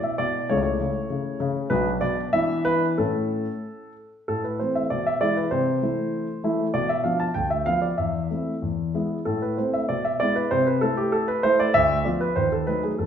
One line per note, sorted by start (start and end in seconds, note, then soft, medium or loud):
0.00 0.18 B2 soft
0.00 0.46 B3 soft
0.00 0.46 E4 soft
0.00 0.19 E5 medium
0.18 0.49 B2 soft
0.18 0.50 D5 medium
0.49 0.80 C#2 soft
0.49 0.78 C#3 medium
0.49 1.67 A3 soft
0.49 1.67 E4 soft
0.49 0.57 C#5 medium
0.57 0.64 D5 medium
0.63 1.40 C#5 medium
0.80 1.09 C#3 soft
1.10 1.39 C#3 soft
1.40 1.70 C#3 medium
1.70 2.00 B1 medium
1.70 2.00 B2 medium
1.70 2.28 B3 soft
1.70 2.28 D4 soft
1.70 1.88 B4 medium
2.01 2.32 B2 soft
2.01 2.20 D5 medium
2.33 2.64 E3 medium
2.33 2.94 B3 soft
2.33 2.94 D4 soft
2.33 2.62 E5 medium
2.65 2.97 E3 medium
2.65 2.84 B4 medium
2.98 3.44 A2 soft
2.98 3.51 A3 soft
2.98 3.51 C#4 soft
2.98 3.92 A4 medium
4.28 4.59 A2 soft
4.28 4.44 A4 medium
4.44 4.60 B4 soft
4.59 4.83 E3 soft
4.59 4.83 A3 soft
4.59 4.83 C4 soft
4.59 4.76 C5 medium
4.75 4.91 E5 medium
4.90 5.21 B2 soft
4.90 5.06 D5 medium
5.07 5.22 E5 medium
5.21 5.44 E3 soft
5.21 5.44 G#3 soft
5.21 5.44 E4 soft
5.21 5.37 D5 medium
5.37 5.52 B4 medium
5.51 5.81 C3 medium
5.51 6.43 C5 medium
5.82 6.26 E3 soft
5.82 6.26 A3 soft
5.82 6.27 E4 soft
6.44 6.65 E3 soft
6.44 6.66 A3 soft
6.44 6.66 E4 medium
6.74 7.03 B2 medium
6.74 6.89 D5 medium
6.89 7.04 E5 medium
7.04 7.26 F3 soft
7.04 7.26 B3 soft
7.04 7.27 D4 soft
7.04 7.19 F5 medium
7.20 7.35 A5 medium
7.34 7.65 D2 soft
7.34 7.50 G5 medium
7.50 7.66 E5 medium
7.66 7.89 F3 soft
7.66 7.89 B3 soft
7.66 7.82 F5 medium
7.82 7.98 D5 medium
7.98 8.29 E2 soft
7.98 8.55 E5 medium
8.30 8.53 A3 soft
8.30 8.53 C4 soft
8.30 8.54 E4 soft
8.62 8.93 E2 soft
8.94 9.17 G#3 soft
8.94 9.18 B3 soft
8.94 9.18 E4 soft
9.25 9.57 A2 soft
9.25 9.42 A4 medium
9.42 9.58 B4 medium
9.57 9.81 A3 soft
9.57 9.81 C4 soft
9.57 9.81 E4 soft
9.57 9.74 C5 soft
9.74 9.89 E5 medium
9.89 10.19 B2 soft
9.89 10.05 D5 medium
10.05 10.20 E5 medium
10.20 10.43 G#3 soft
10.20 10.43 B3 soft
10.20 10.43 E4 soft
10.20 10.36 D5 medium
10.36 10.51 B4 medium
10.51 10.81 C3 medium
10.51 10.66 C5 medium
10.67 10.82 B4 medium
10.81 11.26 A3 soft
10.81 11.26 E4 soft
10.81 10.97 A4 medium
10.97 11.13 G4 medium
11.12 11.28 A4 medium
11.28 11.43 B4 medium
11.43 11.66 A3 medium
11.43 11.66 E4 medium
11.43 11.59 C5 medium
11.60 11.75 D5 medium
11.74 12.04 D2 medium
11.74 12.05 E5 medium
12.05 12.28 F3 soft
12.05 12.28 B3 soft
12.05 12.28 F4 soft
12.05 12.21 D5 medium
12.21 12.36 B4 medium
12.36 12.66 D#2 soft
12.36 12.51 C5 medium
12.52 12.67 A4 medium
12.67 12.90 F#3 soft
12.67 12.90 A3 soft
12.67 12.91 D#4 soft
12.67 12.83 B4 medium
12.83 12.99 G#4 soft
12.98 13.06 E2 soft
12.98 13.06 A4 medium